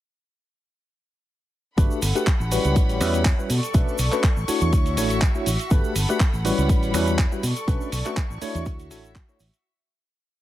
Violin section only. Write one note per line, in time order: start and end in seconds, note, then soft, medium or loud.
1.78 2.51 A4 medium
1.78 3.48 F#5 medium
1.78 3.48 B5 medium
2.52 3.49 G3 medium
2.52 3.49 C#5 medium
3.50 4.72 A4 medium
3.50 4.72 D5 medium
3.50 5.69 C#6 medium
4.73 5.70 F#4 medium
4.73 5.70 E5 medium
5.71 6.44 A4 medium
5.71 7.42 F#5 medium
5.71 6.44 B5 medium
6.45 7.43 G3 medium
6.45 7.43 C#5 medium
6.45 7.43 B5 medium
7.43 8.65 A4 medium
7.43 8.65 D5 medium
7.43 9.62 C#6 medium
8.67 9.64 F#4 medium
8.67 9.64 E5 medium